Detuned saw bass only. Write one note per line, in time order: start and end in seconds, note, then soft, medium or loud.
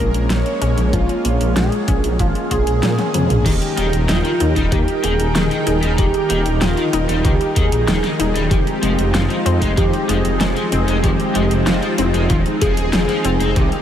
0.00 0.12 A#1 medium
0.14 0.28 A#1 medium
0.30 0.43 A#1 loud
0.62 0.75 A#1 medium
0.77 0.91 A#1 medium
0.93 1.07 A#1 loud
1.25 1.38 A#1 loud
1.41 1.54 A#1 medium
1.56 1.70 A#1 loud
1.88 2.01 A#1 medium
2.04 2.17 A#1 medium
2.19 2.33 G#1 loud
2.51 2.64 A#1 medium
2.67 2.80 A#1 medium
2.83 2.96 A#2 loud
3.15 3.28 F2 medium
3.30 3.44 A#1 medium
3.46 3.59 D#1 loud
3.78 3.91 D#1 loud
3.93 4.07 D#1 medium
4.09 4.22 D#1 loud
4.41 4.54 D#2 medium
4.56 4.70 D#1 medium
4.72 4.85 D#2 loud
5.04 5.17 D#1 medium
5.20 5.33 D#1 medium
5.35 5.49 D#1 loud
5.67 5.80 D#1 medium
5.83 5.96 D#1 medium
5.98 6.12 D#1 loud
6.30 6.43 D#1 loud
6.46 6.59 D#1 medium
6.62 6.75 D#1 loud
6.93 7.07 D#1 loud
7.09 7.22 D#1 medium
7.25 7.38 C#2 loud
7.56 7.70 D#2 medium
7.72 7.85 A#1 medium
7.88 8.01 D#1 loud
8.19 8.33 D#1 medium
8.35 8.49 D#1 medium
8.51 8.64 F1 loud
8.83 8.96 F1 loud
8.98 9.12 F1 medium
9.14 9.28 F1 loud
9.46 9.59 F2 loud
9.62 9.75 F1 medium
9.78 9.91 F2 loud
10.09 10.22 F1 medium
10.25 10.38 F1 medium
10.40 10.54 F1 loud
10.72 10.86 F1 medium
10.88 11.01 F1 medium
11.04 11.17 F1 loud
11.35 11.49 F1 loud
11.51 11.65 F1 medium
11.67 11.80 F1 loud
11.99 12.12 F1 loud
12.14 12.28 F1 medium
12.30 12.43 D#1 loud
12.62 12.75 F1 loud
12.78 12.91 D#1 medium
12.93 13.07 F1 loud
13.24 13.38 F1 medium
13.40 13.54 F1 medium
13.56 13.70 C2 loud